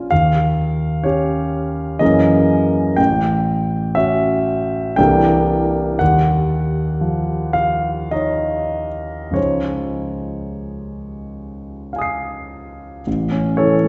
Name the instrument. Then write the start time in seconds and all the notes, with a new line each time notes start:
grand piano
Already playing: F3 C#4 F4 G#5
0.11 D#2 F5
1.04 C#4 G4 C#5
1.99 F#2 E3 A#3 C#4 G#4 D#5
2.96 A1 G5
3.95 C#4 F#4 E5
4.96 C2 E3 A#3 D4 A4 G5
5.99 D#2 F#5
7.01 F3
7.53 F5
8.11 D#4 C#5 D#5
9.31 C#2 F3 G#3 D#4 C#5
9.35 C5
11.93 F5 G#5
11.99 D#6 C7
13.07 A1
13.31 C#4
13.57 E3 A4 C#5
13.84 A3